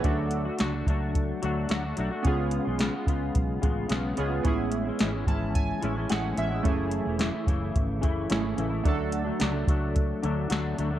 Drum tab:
HH |xxxxxxxx|xxxxxxxx|xxxxxxxx|xxxxxxxx|
SD |--o---o-|--o---o-|--o---o-|--o---o-|
BD |o--oo---|o--ooo--|o--oo---|o--ooo--|

HH |xxxxxxxx|
SD |--o---o-|
BD |o--oo---|